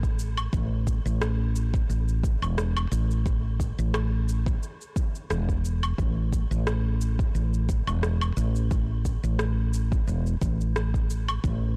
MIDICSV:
0, 0, Header, 1, 3, 480
1, 0, Start_track
1, 0, Tempo, 681818
1, 373, Time_signature, 4, 2, 24, 8
1, 8283, End_track
2, 0, Start_track
2, 0, Title_t, "Fretless electric bass"
2, 0, Program_c, 0, 35
2, 0, Note_on_c, 0, 33, 76
2, 329, Note_off_c, 0, 33, 0
2, 372, Note_on_c, 0, 33, 88
2, 691, Note_off_c, 0, 33, 0
2, 743, Note_on_c, 0, 33, 94
2, 1290, Note_off_c, 0, 33, 0
2, 1334, Note_on_c, 0, 33, 76
2, 1652, Note_off_c, 0, 33, 0
2, 1704, Note_on_c, 0, 28, 87
2, 2010, Note_off_c, 0, 28, 0
2, 2052, Note_on_c, 0, 33, 92
2, 2612, Note_off_c, 0, 33, 0
2, 2664, Note_on_c, 0, 33, 97
2, 3210, Note_off_c, 0, 33, 0
2, 3732, Note_on_c, 0, 28, 87
2, 4169, Note_off_c, 0, 28, 0
2, 4213, Note_on_c, 0, 33, 84
2, 4532, Note_off_c, 0, 33, 0
2, 4583, Note_on_c, 0, 33, 94
2, 5130, Note_off_c, 0, 33, 0
2, 5172, Note_on_c, 0, 33, 79
2, 5492, Note_off_c, 0, 33, 0
2, 5542, Note_on_c, 0, 28, 93
2, 5849, Note_off_c, 0, 28, 0
2, 5891, Note_on_c, 0, 33, 97
2, 6451, Note_off_c, 0, 33, 0
2, 6501, Note_on_c, 0, 33, 90
2, 7049, Note_off_c, 0, 33, 0
2, 7092, Note_on_c, 0, 28, 80
2, 7279, Note_off_c, 0, 28, 0
2, 7332, Note_on_c, 0, 33, 81
2, 8010, Note_off_c, 0, 33, 0
2, 8052, Note_on_c, 0, 33, 92
2, 8283, Note_off_c, 0, 33, 0
2, 8283, End_track
3, 0, Start_track
3, 0, Title_t, "Drums"
3, 23, Note_on_c, 9, 36, 57
3, 27, Note_on_c, 9, 82, 33
3, 93, Note_off_c, 9, 36, 0
3, 97, Note_off_c, 9, 82, 0
3, 135, Note_on_c, 9, 82, 77
3, 206, Note_off_c, 9, 82, 0
3, 264, Note_on_c, 9, 77, 76
3, 266, Note_on_c, 9, 82, 34
3, 334, Note_off_c, 9, 77, 0
3, 337, Note_off_c, 9, 82, 0
3, 372, Note_on_c, 9, 36, 113
3, 376, Note_on_c, 9, 82, 44
3, 443, Note_off_c, 9, 36, 0
3, 446, Note_off_c, 9, 82, 0
3, 613, Note_on_c, 9, 36, 61
3, 616, Note_on_c, 9, 82, 75
3, 683, Note_off_c, 9, 36, 0
3, 686, Note_off_c, 9, 82, 0
3, 748, Note_on_c, 9, 82, 34
3, 819, Note_off_c, 9, 82, 0
3, 856, Note_on_c, 9, 37, 104
3, 858, Note_on_c, 9, 82, 45
3, 926, Note_off_c, 9, 37, 0
3, 928, Note_off_c, 9, 82, 0
3, 1097, Note_on_c, 9, 82, 72
3, 1168, Note_off_c, 9, 82, 0
3, 1223, Note_on_c, 9, 36, 105
3, 1229, Note_on_c, 9, 82, 29
3, 1293, Note_off_c, 9, 36, 0
3, 1300, Note_off_c, 9, 82, 0
3, 1339, Note_on_c, 9, 82, 44
3, 1409, Note_off_c, 9, 82, 0
3, 1467, Note_on_c, 9, 82, 32
3, 1537, Note_off_c, 9, 82, 0
3, 1573, Note_on_c, 9, 36, 100
3, 1578, Note_on_c, 9, 82, 77
3, 1643, Note_off_c, 9, 36, 0
3, 1648, Note_off_c, 9, 82, 0
3, 1707, Note_on_c, 9, 77, 56
3, 1709, Note_on_c, 9, 82, 32
3, 1777, Note_off_c, 9, 77, 0
3, 1780, Note_off_c, 9, 82, 0
3, 1816, Note_on_c, 9, 37, 92
3, 1818, Note_on_c, 9, 82, 44
3, 1886, Note_off_c, 9, 37, 0
3, 1889, Note_off_c, 9, 82, 0
3, 1947, Note_on_c, 9, 77, 76
3, 1949, Note_on_c, 9, 82, 31
3, 2017, Note_off_c, 9, 77, 0
3, 2020, Note_off_c, 9, 82, 0
3, 2058, Note_on_c, 9, 82, 80
3, 2128, Note_off_c, 9, 82, 0
3, 2188, Note_on_c, 9, 82, 34
3, 2259, Note_off_c, 9, 82, 0
3, 2293, Note_on_c, 9, 36, 101
3, 2298, Note_on_c, 9, 82, 42
3, 2363, Note_off_c, 9, 36, 0
3, 2369, Note_off_c, 9, 82, 0
3, 2533, Note_on_c, 9, 36, 60
3, 2538, Note_on_c, 9, 82, 75
3, 2603, Note_off_c, 9, 36, 0
3, 2609, Note_off_c, 9, 82, 0
3, 2668, Note_on_c, 9, 82, 35
3, 2738, Note_off_c, 9, 82, 0
3, 2774, Note_on_c, 9, 37, 98
3, 2774, Note_on_c, 9, 77, 55
3, 2777, Note_on_c, 9, 82, 45
3, 2845, Note_off_c, 9, 37, 0
3, 2845, Note_off_c, 9, 77, 0
3, 2847, Note_off_c, 9, 82, 0
3, 3018, Note_on_c, 9, 82, 71
3, 3088, Note_off_c, 9, 82, 0
3, 3143, Note_on_c, 9, 36, 110
3, 3148, Note_on_c, 9, 82, 32
3, 3213, Note_off_c, 9, 36, 0
3, 3218, Note_off_c, 9, 82, 0
3, 3259, Note_on_c, 9, 82, 40
3, 3330, Note_off_c, 9, 82, 0
3, 3388, Note_on_c, 9, 82, 30
3, 3458, Note_off_c, 9, 82, 0
3, 3492, Note_on_c, 9, 36, 97
3, 3497, Note_on_c, 9, 82, 70
3, 3563, Note_off_c, 9, 36, 0
3, 3567, Note_off_c, 9, 82, 0
3, 3628, Note_on_c, 9, 82, 31
3, 3698, Note_off_c, 9, 82, 0
3, 3735, Note_on_c, 9, 37, 86
3, 3737, Note_on_c, 9, 82, 42
3, 3805, Note_off_c, 9, 37, 0
3, 3808, Note_off_c, 9, 82, 0
3, 3862, Note_on_c, 9, 36, 61
3, 3868, Note_on_c, 9, 82, 31
3, 3933, Note_off_c, 9, 36, 0
3, 3939, Note_off_c, 9, 82, 0
3, 3978, Note_on_c, 9, 82, 77
3, 4048, Note_off_c, 9, 82, 0
3, 4105, Note_on_c, 9, 77, 76
3, 4108, Note_on_c, 9, 82, 36
3, 4176, Note_off_c, 9, 77, 0
3, 4178, Note_off_c, 9, 82, 0
3, 4212, Note_on_c, 9, 36, 100
3, 4217, Note_on_c, 9, 82, 43
3, 4283, Note_off_c, 9, 36, 0
3, 4288, Note_off_c, 9, 82, 0
3, 4453, Note_on_c, 9, 36, 59
3, 4457, Note_on_c, 9, 82, 75
3, 4523, Note_off_c, 9, 36, 0
3, 4528, Note_off_c, 9, 82, 0
3, 4587, Note_on_c, 9, 82, 34
3, 4658, Note_off_c, 9, 82, 0
3, 4695, Note_on_c, 9, 37, 98
3, 4697, Note_on_c, 9, 82, 42
3, 4765, Note_off_c, 9, 37, 0
3, 4768, Note_off_c, 9, 82, 0
3, 4937, Note_on_c, 9, 82, 65
3, 5007, Note_off_c, 9, 82, 0
3, 5063, Note_on_c, 9, 36, 97
3, 5067, Note_on_c, 9, 82, 30
3, 5133, Note_off_c, 9, 36, 0
3, 5138, Note_off_c, 9, 82, 0
3, 5176, Note_on_c, 9, 82, 40
3, 5246, Note_off_c, 9, 82, 0
3, 5306, Note_on_c, 9, 82, 30
3, 5377, Note_off_c, 9, 82, 0
3, 5412, Note_on_c, 9, 36, 92
3, 5415, Note_on_c, 9, 82, 72
3, 5483, Note_off_c, 9, 36, 0
3, 5486, Note_off_c, 9, 82, 0
3, 5543, Note_on_c, 9, 77, 59
3, 5546, Note_on_c, 9, 82, 32
3, 5614, Note_off_c, 9, 77, 0
3, 5616, Note_off_c, 9, 82, 0
3, 5653, Note_on_c, 9, 37, 85
3, 5656, Note_on_c, 9, 82, 40
3, 5724, Note_off_c, 9, 37, 0
3, 5726, Note_off_c, 9, 82, 0
3, 5783, Note_on_c, 9, 77, 74
3, 5785, Note_on_c, 9, 82, 31
3, 5853, Note_off_c, 9, 77, 0
3, 5856, Note_off_c, 9, 82, 0
3, 5894, Note_on_c, 9, 82, 76
3, 5965, Note_off_c, 9, 82, 0
3, 6023, Note_on_c, 9, 82, 33
3, 6093, Note_off_c, 9, 82, 0
3, 6132, Note_on_c, 9, 36, 105
3, 6133, Note_on_c, 9, 82, 43
3, 6203, Note_off_c, 9, 36, 0
3, 6204, Note_off_c, 9, 82, 0
3, 6372, Note_on_c, 9, 36, 58
3, 6374, Note_on_c, 9, 82, 68
3, 6443, Note_off_c, 9, 36, 0
3, 6444, Note_off_c, 9, 82, 0
3, 6505, Note_on_c, 9, 82, 33
3, 6575, Note_off_c, 9, 82, 0
3, 6611, Note_on_c, 9, 37, 93
3, 6614, Note_on_c, 9, 82, 42
3, 6682, Note_off_c, 9, 37, 0
3, 6684, Note_off_c, 9, 82, 0
3, 6854, Note_on_c, 9, 82, 64
3, 6925, Note_off_c, 9, 82, 0
3, 6983, Note_on_c, 9, 36, 98
3, 6985, Note_on_c, 9, 82, 29
3, 7053, Note_off_c, 9, 36, 0
3, 7056, Note_off_c, 9, 82, 0
3, 7095, Note_on_c, 9, 82, 38
3, 7165, Note_off_c, 9, 82, 0
3, 7226, Note_on_c, 9, 82, 27
3, 7296, Note_off_c, 9, 82, 0
3, 7332, Note_on_c, 9, 36, 99
3, 7336, Note_on_c, 9, 82, 72
3, 7403, Note_off_c, 9, 36, 0
3, 7407, Note_off_c, 9, 82, 0
3, 7468, Note_on_c, 9, 82, 31
3, 7538, Note_off_c, 9, 82, 0
3, 7575, Note_on_c, 9, 37, 89
3, 7577, Note_on_c, 9, 82, 41
3, 7645, Note_off_c, 9, 37, 0
3, 7648, Note_off_c, 9, 82, 0
3, 7703, Note_on_c, 9, 36, 55
3, 7708, Note_on_c, 9, 82, 29
3, 7773, Note_off_c, 9, 36, 0
3, 7778, Note_off_c, 9, 82, 0
3, 7816, Note_on_c, 9, 82, 72
3, 7887, Note_off_c, 9, 82, 0
3, 7945, Note_on_c, 9, 77, 85
3, 7947, Note_on_c, 9, 82, 31
3, 8015, Note_off_c, 9, 77, 0
3, 8017, Note_off_c, 9, 82, 0
3, 8052, Note_on_c, 9, 36, 102
3, 8057, Note_on_c, 9, 82, 44
3, 8123, Note_off_c, 9, 36, 0
3, 8128, Note_off_c, 9, 82, 0
3, 8283, End_track
0, 0, End_of_file